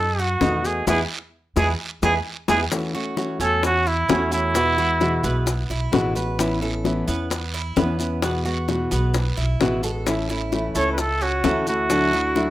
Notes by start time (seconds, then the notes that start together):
Already playing: F#2 D#4 A4
0.19 F#4, maracas
0.41 E2 B2 D#3 A3 B3 D#4 F#4, high bongo, low bongo, short guiro, maracas
0.64 A3 B3 F#4 G#4, high bongo, short guiro, maracas
0.87 E2 E3 G#3 B3 E4 G#4, high bongo, long guiro, maracas
1.56 E2 E3 G#3 B3 E4 G#4, high bongo, long guiro, maracas
2.02 E2 E3 G#3 B3 E4 G#4, high bongo, long guiro, maracas
2.48 E2 E3 G#3 B3 E4 G#4, high bongo, long guiro, maracas
2.71 E3 A3 C#4 F#4, high bongo, long guiro, maracas
2.94 A3 C#4 F#4, high bongo, maracas
3.17 E3 A3 C#4 F#4, high bongo, short guiro, maracas
3.40 E2 A3 C#4 F#4 A4, high bongo, short guiro, maracas
3.63 F#4, muted nylon-string guitar stroke, high bongo, long guiro, maracas
3.86 E4, maracas
4.08 E2 E3 A3 C#4 F#4, high bongo, low bongo, short guiro, maracas
4.31 A3 C#4 E4 F#4, high bongo, short guiro, maracas
4.54 B2 E3 G#3 B3 F#4, high bongo, long guiro, maracas
4.78 G#3 B3 F#4, maracas
5.00 B2 E3 G#3 B3 F#4, high bongo, short guiro, maracas
5.23 B1 G#3 B3 F#4, high bongo, short guiro, maracas
5.46 muted nylon-string guitar stroke, high bongo, long guiro, maracas
5.70 B1 E4, high bongo, maracas
5.92 A1 B2 E3 G#3 B3 F#4, high bongo, low bongo, short guiro, maracas
6.15 G#3 B3 F#4 B4, high bongo, short guiro, maracas
6.39 E3 B3 C#4 E4, high bongo, long guiro, maracas
6.62 B3 C#4 E4 A4, high bongo, maracas
6.84 E3 B3 C#4 E4, high bongo, short guiro, maracas
7.07 E2 B3 C#4 E4, high bongo, short guiro, maracas
7.30 muted nylon-string guitar stroke, high bongo, long guiro, maracas
7.54 E4, maracas
7.76 E2 E3 B3 C#4 E4, high bongo, low bongo, short guiro, maracas
7.99 B3 C#4 E4, high bongo, short guiro, maracas
8.22 B2 E3 G#3 B3 F#4, high bongo, long guiro, maracas
8.45 G#3 B3 F#4, maracas
8.68 B2 E3 G#3 B3 F#4, high bongo, short guiro, maracas
8.91 B1 G#3 B3 F#4, high bongo, short guiro, maracas
9.14 muted nylon-string guitar stroke, high bongo, long guiro, maracas
9.37 B1 E4, high bongo, maracas
9.60 A1 B2 E3 G#3 B3 F#4, high bongo, low bongo, short guiro, maracas
9.83 G#3 B3 F#4 A4, high bongo, short guiro, maracas
10.06 E3 A3 C#4 E4, high bongo, long guiro, maracas
10.29 A3 C#4 E4, high bongo, maracas
10.52 E3 A3 C#4 E4, high bongo, short guiro, maracas
10.75 C#2 A3 C#4 E4 C#5, high bongo, short guiro, maracas
10.93 B4
10.98 A4, muted nylon-string guitar stroke, high bongo, long guiro, maracas
11.21 C#4 F#4, maracas
11.44 D2 E3 A3 C#4 E4, high bongo, low bongo, short guiro, maracas
11.67 A3 C#4 E4 F#4, high bongo, short guiro, maracas
11.90 D3 F#3 A3 D4 E4, high bongo, long guiro, maracas
12.13 A3 E4, maracas
12.35 D3 F#3 A3 D4 E4, high bongo, short guiro, maracas